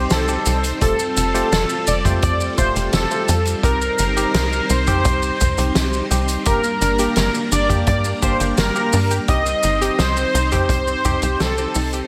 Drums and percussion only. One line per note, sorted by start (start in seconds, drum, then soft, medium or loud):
0.10 snare loud
0.10 closed hi-hat loud
0.10 shaker medium
0.28 shaker soft
0.46 closed hi-hat medium
0.46 shaker medium
0.64 closed hi-hat medium
0.64 shaker soft
0.82 kick loud
0.82 closed hi-hat loud
0.82 shaker medium
0.99 shaker soft
1.17 closed hi-hat medium
1.17 shaker medium
1.35 closed hi-hat medium
1.35 shaker soft
1.52 snare loud
1.52 closed hi-hat medium
1.52 shaker medium
1.70 shaker soft
1.87 closed hi-hat medium
1.87 shaker medium
2.05 kick medium
2.05 closed hi-hat medium
2.05 mid tom medium
2.05 shaker soft
2.22 kick loud
2.22 closed hi-hat loud
2.22 shaker medium
2.40 shaker soft
2.58 kick loud
2.58 closed hi-hat medium
2.58 shaker medium
2.76 closed hi-hat medium
2.76 shaker soft
2.93 snare loud
2.93 closed hi-hat loud
2.93 shaker medium
3.11 shaker soft
3.28 closed hi-hat medium
3.28 shaker medium
3.45 closed hi-hat medium
3.45 shaker soft
3.63 kick loud
3.63 closed hi-hat medium
3.63 shaker medium
3.82 shaker soft
3.99 closed hi-hat medium
3.99 shaker medium
4.17 closed hi-hat medium
4.17 shaker soft
4.34 snare loud
4.34 closed hi-hat loud
4.34 shaker medium
4.53 shaker soft
4.69 closed hi-hat medium
4.69 shaker medium
4.87 kick medium
4.87 closed hi-hat medium
4.87 mid tom loud
4.87 shaker soft
5.05 kick loud
5.05 closed hi-hat loud
5.05 shaker medium
5.22 shaker soft
5.41 kick medium
5.41 closed hi-hat medium
5.41 mid tom medium
5.41 shaker medium
5.58 closed hi-hat medium
5.58 shaker soft
5.75 snare loud
5.75 closed hi-hat loud
5.75 shaker medium
5.93 shaker soft
6.11 closed hi-hat medium
6.11 shaker medium
6.28 closed hi-hat medium
6.28 shaker soft
6.45 kick loud
6.45 closed hi-hat loud
6.45 shaker medium
6.64 shaker soft
6.82 closed hi-hat medium
6.82 shaker medium
6.99 closed hi-hat medium
6.99 shaker soft
7.16 snare loud
7.16 closed hi-hat loud
7.16 shaker medium
7.34 shaker soft
7.52 closed hi-hat medium
7.52 shaker medium
7.70 kick medium
7.70 closed hi-hat medium
7.70 mid tom medium
7.70 shaker soft
7.87 kick loud
7.87 closed hi-hat loud
7.87 shaker medium
8.04 shaker soft
8.22 kick loud
8.22 closed hi-hat medium
8.22 shaker medium
8.40 closed hi-hat medium
8.40 shaker soft
8.57 snare loud
8.57 closed hi-hat loud
8.57 shaker medium
8.76 shaker soft
8.93 open hi-hat medium
8.93 shaker medium
9.11 closed hi-hat medium
9.11 shaker soft
9.28 kick loud
9.28 closed hi-hat loud
9.28 shaker medium
9.46 shaker soft
9.63 closed hi-hat medium
9.63 shaker medium
9.82 closed hi-hat medium
9.82 shaker soft
9.99 snare loud
9.99 closed hi-hat loud
9.99 shaker medium
10.17 shaker soft
10.35 closed hi-hat medium
10.35 shaker medium
10.52 kick medium
10.52 closed hi-hat medium
10.52 mid tom medium
10.52 shaker soft
10.69 kick loud
10.69 closed hi-hat loud
10.69 shaker medium
10.88 shaker soft
11.05 kick medium
11.05 closed hi-hat medium
11.05 mid tom medium
11.05 shaker medium
11.22 closed hi-hat medium
11.22 shaker soft
11.40 snare loud
11.40 closed hi-hat medium
11.40 shaker medium
11.58 shaker soft
11.75 open hi-hat medium
11.75 shaker medium
11.93 closed hi-hat medium
11.93 shaker medium